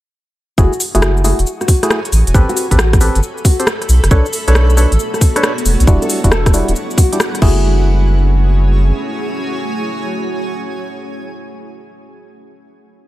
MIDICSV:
0, 0, Header, 1, 7, 480
1, 0, Start_track
1, 0, Key_signature, 3, "minor"
1, 0, Tempo, 441176
1, 632, Time_signature, 4, 2, 24, 8
1, 14229, End_track
2, 0, Start_track
2, 0, Title_t, "Ambient pad"
2, 0, Program_c, 0, 92
2, 628, Note_on_c, 0, 66, 81
2, 2311, Note_on_c, 0, 69, 78
2, 2962, Note_on_c, 0, 76, 77
2, 2993, Note_on_c, 0, 83, 84
2, 3094, Note_off_c, 0, 66, 0
2, 4231, Note_on_c, 0, 59, 79
2, 4382, Note_on_c, 0, 66, 86
2, 4900, Note_off_c, 0, 76, 0
2, 5014, Note_off_c, 0, 83, 0
2, 5015, Note_off_c, 0, 69, 0
2, 5110, Note_on_c, 0, 73, 84
2, 6149, Note_on_c, 0, 64, 78
2, 6387, Note_on_c, 0, 78, 96
2, 7046, Note_off_c, 0, 66, 0
2, 7047, Note_off_c, 0, 59, 0
2, 7047, Note_off_c, 0, 73, 0
2, 8071, Note_off_c, 0, 64, 0
2, 8071, Note_on_c, 0, 66, 78
2, 8072, Note_off_c, 0, 78, 0
2, 8166, Note_on_c, 0, 73, 79
2, 8486, Note_on_c, 0, 80, 77
2, 12195, Note_off_c, 0, 66, 0
2, 12290, Note_off_c, 0, 73, 0
2, 12610, Note_off_c, 0, 80, 0
2, 14229, End_track
3, 0, Start_track
3, 0, Title_t, "Nylon-string guitar"
3, 0, Program_c, 1, 24
3, 633, Note_on_c, 1, 66, 100
3, 854, Note_off_c, 1, 66, 0
3, 1034, Note_on_c, 1, 66, 90
3, 1236, Note_off_c, 1, 66, 0
3, 1353, Note_on_c, 1, 66, 92
3, 1574, Note_off_c, 1, 66, 0
3, 1753, Note_on_c, 1, 66, 91
3, 1956, Note_off_c, 1, 66, 0
3, 2712, Note_on_c, 1, 66, 96
3, 2915, Note_off_c, 1, 66, 0
3, 3029, Note_on_c, 1, 66, 102
3, 3252, Note_off_c, 1, 66, 0
3, 3753, Note_on_c, 1, 66, 93
3, 3974, Note_off_c, 1, 66, 0
3, 4473, Note_on_c, 1, 69, 97
3, 4694, Note_off_c, 1, 69, 0
3, 4874, Note_on_c, 1, 69, 97
3, 5076, Note_off_c, 1, 69, 0
3, 5193, Note_on_c, 1, 69, 94
3, 5414, Note_off_c, 1, 69, 0
3, 5590, Note_on_c, 1, 69, 94
3, 5794, Note_off_c, 1, 69, 0
3, 6550, Note_on_c, 1, 69, 100
3, 6754, Note_off_c, 1, 69, 0
3, 6870, Note_on_c, 1, 69, 100
3, 7093, Note_off_c, 1, 69, 0
3, 7589, Note_on_c, 1, 66, 100
3, 7812, Note_off_c, 1, 66, 0
3, 8072, Note_on_c, 1, 66, 86
3, 12197, Note_off_c, 1, 66, 0
3, 14229, End_track
4, 0, Start_track
4, 0, Title_t, "Synth stab"
4, 0, Program_c, 2, 62
4, 631, Note_on_c, 2, 57, 90
4, 631, Note_on_c, 2, 66, 80
4, 632, Note_on_c, 2, 64, 81
4, 632, Note_on_c, 2, 68, 100
4, 794, Note_off_c, 2, 57, 0
4, 794, Note_off_c, 2, 64, 0
4, 794, Note_off_c, 2, 66, 0
4, 794, Note_off_c, 2, 68, 0
4, 1030, Note_on_c, 2, 66, 84
4, 1030, Note_on_c, 2, 68, 92
4, 1031, Note_on_c, 2, 57, 87
4, 1031, Note_on_c, 2, 64, 80
4, 1332, Note_off_c, 2, 57, 0
4, 1332, Note_off_c, 2, 64, 0
4, 1332, Note_off_c, 2, 66, 0
4, 1332, Note_off_c, 2, 68, 0
4, 1352, Note_on_c, 2, 57, 74
4, 1352, Note_on_c, 2, 64, 70
4, 1352, Note_on_c, 2, 66, 69
4, 1352, Note_on_c, 2, 68, 81
4, 1514, Note_off_c, 2, 57, 0
4, 1514, Note_off_c, 2, 64, 0
4, 1514, Note_off_c, 2, 66, 0
4, 1514, Note_off_c, 2, 68, 0
4, 1991, Note_on_c, 2, 57, 104
4, 1991, Note_on_c, 2, 64, 92
4, 1991, Note_on_c, 2, 66, 91
4, 1991, Note_on_c, 2, 68, 110
4, 2176, Note_off_c, 2, 57, 0
4, 2176, Note_off_c, 2, 64, 0
4, 2176, Note_off_c, 2, 66, 0
4, 2176, Note_off_c, 2, 68, 0
4, 2551, Note_on_c, 2, 60, 95
4, 2551, Note_on_c, 2, 67, 88
4, 2551, Note_on_c, 2, 69, 84
4, 2552, Note_on_c, 2, 71, 105
4, 2913, Note_off_c, 2, 60, 0
4, 2913, Note_off_c, 2, 67, 0
4, 2913, Note_off_c, 2, 69, 0
4, 2913, Note_off_c, 2, 71, 0
4, 2950, Note_on_c, 2, 60, 86
4, 2950, Note_on_c, 2, 67, 78
4, 2950, Note_on_c, 2, 69, 81
4, 2950, Note_on_c, 2, 71, 98
4, 3037, Note_off_c, 2, 60, 0
4, 3037, Note_off_c, 2, 67, 0
4, 3037, Note_off_c, 2, 69, 0
4, 3037, Note_off_c, 2, 71, 0
4, 3272, Note_on_c, 2, 60, 93
4, 3272, Note_on_c, 2, 67, 88
4, 3272, Note_on_c, 2, 69, 87
4, 3272, Note_on_c, 2, 71, 105
4, 3484, Note_off_c, 2, 60, 0
4, 3484, Note_off_c, 2, 67, 0
4, 3484, Note_off_c, 2, 69, 0
4, 3484, Note_off_c, 2, 71, 0
4, 3913, Note_on_c, 2, 60, 79
4, 3913, Note_on_c, 2, 67, 75
4, 3913, Note_on_c, 2, 69, 72
4, 3913, Note_on_c, 2, 72, 86
4, 3998, Note_off_c, 2, 60, 0
4, 3998, Note_off_c, 2, 67, 0
4, 3998, Note_off_c, 2, 69, 0
4, 3998, Note_off_c, 2, 72, 0
4, 4472, Note_on_c, 2, 71, 83
4, 4473, Note_on_c, 2, 62, 89
4, 4473, Note_on_c, 2, 69, 83
4, 4473, Note_on_c, 2, 73, 103
4, 4635, Note_off_c, 2, 62, 0
4, 4635, Note_off_c, 2, 69, 0
4, 4635, Note_off_c, 2, 71, 0
4, 4635, Note_off_c, 2, 73, 0
4, 4871, Note_on_c, 2, 71, 80
4, 4872, Note_on_c, 2, 62, 86
4, 4872, Note_on_c, 2, 69, 85
4, 4872, Note_on_c, 2, 73, 102
4, 5173, Note_off_c, 2, 62, 0
4, 5173, Note_off_c, 2, 69, 0
4, 5173, Note_off_c, 2, 71, 0
4, 5173, Note_off_c, 2, 73, 0
4, 5191, Note_on_c, 2, 73, 82
4, 5192, Note_on_c, 2, 62, 71
4, 5192, Note_on_c, 2, 69, 69
4, 5192, Note_on_c, 2, 71, 70
4, 5354, Note_off_c, 2, 62, 0
4, 5354, Note_off_c, 2, 69, 0
4, 5354, Note_off_c, 2, 71, 0
4, 5354, Note_off_c, 2, 73, 0
4, 5830, Note_on_c, 2, 62, 100
4, 5831, Note_on_c, 2, 69, 93
4, 5831, Note_on_c, 2, 71, 95
4, 5831, Note_on_c, 2, 73, 108
4, 6016, Note_off_c, 2, 62, 0
4, 6016, Note_off_c, 2, 69, 0
4, 6016, Note_off_c, 2, 71, 0
4, 6016, Note_off_c, 2, 73, 0
4, 6391, Note_on_c, 2, 62, 92
4, 6391, Note_on_c, 2, 64, 88
4, 6392, Note_on_c, 2, 55, 97
4, 6392, Note_on_c, 2, 66, 108
4, 6753, Note_off_c, 2, 55, 0
4, 6753, Note_off_c, 2, 62, 0
4, 6753, Note_off_c, 2, 64, 0
4, 6753, Note_off_c, 2, 66, 0
4, 6791, Note_on_c, 2, 55, 87
4, 6791, Note_on_c, 2, 62, 78
4, 6791, Note_on_c, 2, 64, 84
4, 6791, Note_on_c, 2, 66, 102
4, 6877, Note_off_c, 2, 55, 0
4, 6877, Note_off_c, 2, 62, 0
4, 6877, Note_off_c, 2, 64, 0
4, 6877, Note_off_c, 2, 66, 0
4, 7111, Note_on_c, 2, 55, 96
4, 7111, Note_on_c, 2, 62, 90
4, 7111, Note_on_c, 2, 64, 90
4, 7111, Note_on_c, 2, 66, 101
4, 7324, Note_off_c, 2, 55, 0
4, 7324, Note_off_c, 2, 62, 0
4, 7324, Note_off_c, 2, 64, 0
4, 7324, Note_off_c, 2, 66, 0
4, 7752, Note_on_c, 2, 55, 75
4, 7752, Note_on_c, 2, 62, 74
4, 7752, Note_on_c, 2, 64, 72
4, 7752, Note_on_c, 2, 67, 86
4, 7837, Note_off_c, 2, 55, 0
4, 7837, Note_off_c, 2, 64, 0
4, 7838, Note_off_c, 2, 62, 0
4, 7838, Note_off_c, 2, 67, 0
4, 8071, Note_on_c, 2, 57, 87
4, 8071, Note_on_c, 2, 64, 82
4, 8071, Note_on_c, 2, 66, 80
4, 8071, Note_on_c, 2, 68, 101
4, 12195, Note_off_c, 2, 64, 0
4, 12195, Note_off_c, 2, 66, 0
4, 12196, Note_off_c, 2, 57, 0
4, 12196, Note_off_c, 2, 68, 0
4, 14229, End_track
5, 0, Start_track
5, 0, Title_t, "Ambient pad"
5, 0, Program_c, 3, 92
5, 4471, Note_on_c, 3, 57, 83
5, 4471, Note_on_c, 3, 66, 90
5, 4471, Note_on_c, 3, 73, 76
5, 4472, Note_on_c, 3, 62, 79
5, 6135, Note_off_c, 3, 57, 0
5, 6135, Note_off_c, 3, 62, 0
5, 6135, Note_off_c, 3, 73, 0
5, 6151, Note_on_c, 3, 59, 76
5, 6153, Note_on_c, 3, 55, 84
5, 6153, Note_on_c, 3, 62, 76
5, 8036, Note_off_c, 3, 66, 0
5, 8053, Note_off_c, 3, 55, 0
5, 8053, Note_off_c, 3, 59, 0
5, 8053, Note_off_c, 3, 62, 0
5, 8071, Note_on_c, 3, 57, 83
5, 8071, Note_on_c, 3, 61, 76
5, 8072, Note_on_c, 3, 64, 74
5, 8072, Note_on_c, 3, 68, 89
5, 12195, Note_off_c, 3, 57, 0
5, 12195, Note_off_c, 3, 61, 0
5, 12196, Note_off_c, 3, 64, 0
5, 12196, Note_off_c, 3, 68, 0
5, 14229, End_track
6, 0, Start_track
6, 0, Title_t, "Sub bass"
6, 0, Program_c, 4, 38
6, 631, Note_on_c, 4, 30, 103
6, 753, Note_off_c, 4, 30, 0
6, 1032, Note_on_c, 4, 30, 101
6, 1452, Note_off_c, 4, 30, 0
6, 1512, Note_on_c, 4, 28, 89
6, 1573, Note_off_c, 4, 28, 0
6, 2311, Note_on_c, 4, 33, 89
6, 2434, Note_off_c, 4, 33, 0
6, 2469, Note_on_c, 4, 28, 83
6, 2532, Note_off_c, 4, 28, 0
6, 2551, Note_on_c, 4, 33, 102
6, 2674, Note_off_c, 4, 33, 0
6, 2951, Note_on_c, 4, 33, 101
6, 3371, Note_off_c, 4, 33, 0
6, 3432, Note_on_c, 4, 31, 92
6, 3493, Note_off_c, 4, 31, 0
6, 4232, Note_on_c, 4, 35, 90
6, 4354, Note_off_c, 4, 35, 0
6, 4391, Note_on_c, 4, 30, 87
6, 4453, Note_off_c, 4, 30, 0
6, 4472, Note_on_c, 4, 35, 101
6, 4594, Note_off_c, 4, 35, 0
6, 4870, Note_on_c, 4, 35, 102
6, 5291, Note_off_c, 4, 35, 0
6, 5350, Note_on_c, 4, 33, 90
6, 5413, Note_off_c, 4, 33, 0
6, 6151, Note_on_c, 4, 28, 88
6, 6274, Note_off_c, 4, 28, 0
6, 6310, Note_on_c, 4, 35, 90
6, 6373, Note_off_c, 4, 35, 0
6, 6391, Note_on_c, 4, 28, 100
6, 6514, Note_off_c, 4, 28, 0
6, 6791, Note_on_c, 4, 28, 95
6, 7211, Note_off_c, 4, 28, 0
6, 7272, Note_on_c, 4, 26, 88
6, 7333, Note_off_c, 4, 26, 0
6, 8071, Note_on_c, 4, 30, 102
6, 9708, Note_off_c, 4, 30, 0
6, 14229, End_track
7, 0, Start_track
7, 0, Title_t, "Drums"
7, 630, Note_on_c, 9, 36, 124
7, 633, Note_on_c, 9, 69, 38
7, 739, Note_off_c, 9, 36, 0
7, 742, Note_off_c, 9, 69, 0
7, 793, Note_on_c, 9, 69, 27
7, 872, Note_off_c, 9, 69, 0
7, 872, Note_on_c, 9, 46, 107
7, 872, Note_on_c, 9, 69, 75
7, 981, Note_off_c, 9, 46, 0
7, 981, Note_off_c, 9, 69, 0
7, 1032, Note_on_c, 9, 42, 70
7, 1032, Note_on_c, 9, 69, 32
7, 1113, Note_off_c, 9, 69, 0
7, 1113, Note_on_c, 9, 37, 122
7, 1113, Note_on_c, 9, 69, 40
7, 1141, Note_off_c, 9, 42, 0
7, 1222, Note_off_c, 9, 37, 0
7, 1222, Note_off_c, 9, 69, 0
7, 1273, Note_on_c, 9, 69, 29
7, 1354, Note_off_c, 9, 69, 0
7, 1354, Note_on_c, 9, 46, 93
7, 1354, Note_on_c, 9, 69, 66
7, 1463, Note_off_c, 9, 46, 0
7, 1463, Note_off_c, 9, 69, 0
7, 1513, Note_on_c, 9, 42, 62
7, 1513, Note_on_c, 9, 69, 30
7, 1593, Note_off_c, 9, 69, 0
7, 1593, Note_on_c, 9, 69, 42
7, 1622, Note_off_c, 9, 42, 0
7, 1702, Note_off_c, 9, 69, 0
7, 1752, Note_on_c, 9, 37, 32
7, 1752, Note_on_c, 9, 69, 27
7, 1830, Note_on_c, 9, 36, 101
7, 1832, Note_off_c, 9, 69, 0
7, 1832, Note_on_c, 9, 46, 112
7, 1832, Note_on_c, 9, 69, 71
7, 1861, Note_off_c, 9, 37, 0
7, 1939, Note_off_c, 9, 36, 0
7, 1941, Note_off_c, 9, 46, 0
7, 1941, Note_off_c, 9, 69, 0
7, 1991, Note_on_c, 9, 37, 63
7, 1991, Note_on_c, 9, 42, 72
7, 1991, Note_on_c, 9, 69, 32
7, 2073, Note_off_c, 9, 37, 0
7, 2073, Note_off_c, 9, 69, 0
7, 2073, Note_on_c, 9, 37, 122
7, 2073, Note_on_c, 9, 69, 41
7, 2100, Note_off_c, 9, 42, 0
7, 2181, Note_off_c, 9, 37, 0
7, 2181, Note_off_c, 9, 69, 0
7, 2232, Note_on_c, 9, 42, 52
7, 2232, Note_on_c, 9, 69, 28
7, 2312, Note_off_c, 9, 69, 0
7, 2312, Note_on_c, 9, 46, 100
7, 2312, Note_on_c, 9, 69, 70
7, 2341, Note_off_c, 9, 42, 0
7, 2421, Note_off_c, 9, 46, 0
7, 2421, Note_off_c, 9, 69, 0
7, 2472, Note_on_c, 9, 42, 69
7, 2472, Note_on_c, 9, 69, 31
7, 2551, Note_on_c, 9, 36, 127
7, 2553, Note_off_c, 9, 69, 0
7, 2553, Note_on_c, 9, 69, 37
7, 2581, Note_off_c, 9, 42, 0
7, 2660, Note_off_c, 9, 36, 0
7, 2662, Note_off_c, 9, 69, 0
7, 2714, Note_on_c, 9, 42, 33
7, 2714, Note_on_c, 9, 69, 27
7, 2793, Note_off_c, 9, 69, 0
7, 2793, Note_on_c, 9, 46, 109
7, 2793, Note_on_c, 9, 69, 73
7, 2822, Note_off_c, 9, 42, 0
7, 2902, Note_off_c, 9, 46, 0
7, 2902, Note_off_c, 9, 69, 0
7, 2951, Note_on_c, 9, 36, 67
7, 2952, Note_on_c, 9, 42, 68
7, 2952, Note_on_c, 9, 69, 32
7, 3033, Note_off_c, 9, 69, 0
7, 3033, Note_on_c, 9, 37, 119
7, 3033, Note_on_c, 9, 69, 40
7, 3060, Note_off_c, 9, 36, 0
7, 3061, Note_off_c, 9, 42, 0
7, 3141, Note_off_c, 9, 37, 0
7, 3141, Note_off_c, 9, 69, 0
7, 3191, Note_on_c, 9, 36, 113
7, 3192, Note_on_c, 9, 37, 74
7, 3192, Note_on_c, 9, 42, 36
7, 3192, Note_on_c, 9, 69, 29
7, 3273, Note_off_c, 9, 69, 0
7, 3273, Note_on_c, 9, 46, 91
7, 3273, Note_on_c, 9, 69, 69
7, 3300, Note_off_c, 9, 36, 0
7, 3300, Note_off_c, 9, 37, 0
7, 3300, Note_off_c, 9, 42, 0
7, 3382, Note_off_c, 9, 46, 0
7, 3382, Note_off_c, 9, 69, 0
7, 3432, Note_on_c, 9, 42, 63
7, 3432, Note_on_c, 9, 69, 30
7, 3513, Note_off_c, 9, 69, 0
7, 3513, Note_on_c, 9, 69, 43
7, 3541, Note_off_c, 9, 42, 0
7, 3622, Note_off_c, 9, 69, 0
7, 3673, Note_on_c, 9, 69, 29
7, 3752, Note_on_c, 9, 36, 108
7, 3753, Note_off_c, 9, 69, 0
7, 3753, Note_on_c, 9, 46, 108
7, 3753, Note_on_c, 9, 69, 73
7, 3861, Note_off_c, 9, 36, 0
7, 3862, Note_off_c, 9, 46, 0
7, 3862, Note_off_c, 9, 69, 0
7, 3913, Note_on_c, 9, 42, 69
7, 3913, Note_on_c, 9, 69, 32
7, 3992, Note_off_c, 9, 69, 0
7, 3992, Note_on_c, 9, 37, 126
7, 3992, Note_on_c, 9, 69, 41
7, 4022, Note_off_c, 9, 42, 0
7, 4101, Note_off_c, 9, 37, 0
7, 4101, Note_off_c, 9, 69, 0
7, 4153, Note_on_c, 9, 37, 34
7, 4153, Note_on_c, 9, 42, 50
7, 4153, Note_on_c, 9, 69, 28
7, 4232, Note_off_c, 9, 69, 0
7, 4232, Note_on_c, 9, 46, 97
7, 4232, Note_on_c, 9, 69, 73
7, 4261, Note_off_c, 9, 37, 0
7, 4261, Note_off_c, 9, 42, 0
7, 4341, Note_off_c, 9, 46, 0
7, 4341, Note_off_c, 9, 69, 0
7, 4392, Note_on_c, 9, 37, 64
7, 4392, Note_on_c, 9, 42, 67
7, 4392, Note_on_c, 9, 69, 31
7, 4472, Note_off_c, 9, 69, 0
7, 4472, Note_on_c, 9, 36, 127
7, 4472, Note_on_c, 9, 69, 37
7, 4501, Note_off_c, 9, 37, 0
7, 4501, Note_off_c, 9, 42, 0
7, 4581, Note_off_c, 9, 36, 0
7, 4581, Note_off_c, 9, 69, 0
7, 4632, Note_on_c, 9, 69, 28
7, 4711, Note_off_c, 9, 69, 0
7, 4711, Note_on_c, 9, 46, 101
7, 4711, Note_on_c, 9, 69, 75
7, 4820, Note_off_c, 9, 46, 0
7, 4820, Note_off_c, 9, 69, 0
7, 4871, Note_on_c, 9, 42, 66
7, 4871, Note_on_c, 9, 69, 33
7, 4953, Note_off_c, 9, 69, 0
7, 4953, Note_on_c, 9, 37, 126
7, 4953, Note_on_c, 9, 69, 39
7, 4980, Note_off_c, 9, 42, 0
7, 5061, Note_off_c, 9, 37, 0
7, 5061, Note_off_c, 9, 69, 0
7, 5112, Note_on_c, 9, 69, 31
7, 5193, Note_off_c, 9, 69, 0
7, 5193, Note_on_c, 9, 46, 84
7, 5193, Note_on_c, 9, 69, 72
7, 5302, Note_off_c, 9, 46, 0
7, 5302, Note_off_c, 9, 69, 0
7, 5353, Note_on_c, 9, 42, 63
7, 5353, Note_on_c, 9, 69, 30
7, 5433, Note_off_c, 9, 69, 0
7, 5433, Note_on_c, 9, 69, 44
7, 5462, Note_off_c, 9, 42, 0
7, 5542, Note_off_c, 9, 69, 0
7, 5593, Note_on_c, 9, 37, 34
7, 5593, Note_on_c, 9, 69, 29
7, 5672, Note_on_c, 9, 36, 114
7, 5673, Note_off_c, 9, 69, 0
7, 5673, Note_on_c, 9, 46, 105
7, 5673, Note_on_c, 9, 69, 70
7, 5702, Note_off_c, 9, 37, 0
7, 5780, Note_off_c, 9, 36, 0
7, 5782, Note_off_c, 9, 46, 0
7, 5782, Note_off_c, 9, 69, 0
7, 5833, Note_on_c, 9, 37, 62
7, 5833, Note_on_c, 9, 42, 68
7, 5833, Note_on_c, 9, 69, 32
7, 5913, Note_off_c, 9, 37, 0
7, 5913, Note_off_c, 9, 69, 0
7, 5913, Note_on_c, 9, 37, 126
7, 5913, Note_on_c, 9, 69, 42
7, 5942, Note_off_c, 9, 42, 0
7, 6022, Note_off_c, 9, 37, 0
7, 6022, Note_off_c, 9, 69, 0
7, 6073, Note_on_c, 9, 42, 51
7, 6073, Note_on_c, 9, 69, 30
7, 6153, Note_off_c, 9, 69, 0
7, 6153, Note_on_c, 9, 46, 91
7, 6153, Note_on_c, 9, 69, 75
7, 6182, Note_off_c, 9, 42, 0
7, 6262, Note_off_c, 9, 46, 0
7, 6262, Note_off_c, 9, 69, 0
7, 6313, Note_on_c, 9, 42, 67
7, 6313, Note_on_c, 9, 69, 33
7, 6391, Note_on_c, 9, 36, 122
7, 6393, Note_off_c, 9, 69, 0
7, 6393, Note_on_c, 9, 69, 42
7, 6422, Note_off_c, 9, 42, 0
7, 6500, Note_off_c, 9, 36, 0
7, 6502, Note_off_c, 9, 69, 0
7, 6552, Note_on_c, 9, 42, 34
7, 6552, Note_on_c, 9, 69, 30
7, 6632, Note_off_c, 9, 69, 0
7, 6632, Note_on_c, 9, 46, 104
7, 6632, Note_on_c, 9, 69, 77
7, 6661, Note_off_c, 9, 42, 0
7, 6741, Note_off_c, 9, 46, 0
7, 6741, Note_off_c, 9, 69, 0
7, 6791, Note_on_c, 9, 36, 63
7, 6792, Note_on_c, 9, 42, 71
7, 6792, Note_on_c, 9, 69, 34
7, 6872, Note_off_c, 9, 69, 0
7, 6872, Note_on_c, 9, 37, 123
7, 6872, Note_on_c, 9, 69, 42
7, 6900, Note_off_c, 9, 36, 0
7, 6901, Note_off_c, 9, 42, 0
7, 6980, Note_off_c, 9, 37, 0
7, 6980, Note_off_c, 9, 69, 0
7, 7031, Note_on_c, 9, 36, 115
7, 7032, Note_on_c, 9, 37, 72
7, 7032, Note_on_c, 9, 42, 37
7, 7032, Note_on_c, 9, 69, 31
7, 7113, Note_off_c, 9, 69, 0
7, 7113, Note_on_c, 9, 46, 88
7, 7113, Note_on_c, 9, 69, 75
7, 7140, Note_off_c, 9, 36, 0
7, 7141, Note_off_c, 9, 37, 0
7, 7141, Note_off_c, 9, 42, 0
7, 7222, Note_off_c, 9, 46, 0
7, 7222, Note_off_c, 9, 69, 0
7, 7273, Note_on_c, 9, 42, 63
7, 7273, Note_on_c, 9, 69, 32
7, 7353, Note_off_c, 9, 69, 0
7, 7353, Note_on_c, 9, 69, 46
7, 7382, Note_off_c, 9, 42, 0
7, 7462, Note_off_c, 9, 69, 0
7, 7513, Note_on_c, 9, 69, 31
7, 7591, Note_on_c, 9, 36, 115
7, 7594, Note_off_c, 9, 69, 0
7, 7594, Note_on_c, 9, 46, 101
7, 7594, Note_on_c, 9, 69, 77
7, 7700, Note_off_c, 9, 36, 0
7, 7703, Note_off_c, 9, 46, 0
7, 7703, Note_off_c, 9, 69, 0
7, 7753, Note_on_c, 9, 42, 69
7, 7753, Note_on_c, 9, 69, 34
7, 7834, Note_off_c, 9, 69, 0
7, 7834, Note_on_c, 9, 37, 127
7, 7834, Note_on_c, 9, 69, 45
7, 7862, Note_off_c, 9, 42, 0
7, 7943, Note_off_c, 9, 37, 0
7, 7943, Note_off_c, 9, 69, 0
7, 7995, Note_on_c, 9, 37, 32
7, 7995, Note_on_c, 9, 42, 52
7, 7995, Note_on_c, 9, 69, 31
7, 8072, Note_on_c, 9, 36, 114
7, 8073, Note_on_c, 9, 49, 91
7, 8103, Note_off_c, 9, 37, 0
7, 8103, Note_off_c, 9, 42, 0
7, 8103, Note_off_c, 9, 69, 0
7, 8181, Note_off_c, 9, 36, 0
7, 8182, Note_off_c, 9, 49, 0
7, 14229, End_track
0, 0, End_of_file